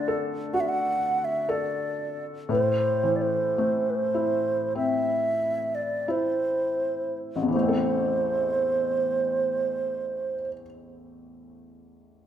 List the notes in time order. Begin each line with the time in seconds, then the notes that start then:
Already playing: D3 A3 D4 D5
0.08 A4
0.53 F#4 F#5
0.60 E5
0.69 F#5
1.25 E5
1.49 A4 D5
2.49 A2 C5
3.03 E3
3.16 D5
3.22 C5
3.58 A3
3.90 B4
3.95 C5
4.14 E4
4.75 C4 E5
5.75 D5
6.08 E4 C5
7.36 A1
7.42 E2
7.48 E3
7.53 A3 C5
7.63 C4
7.68 A4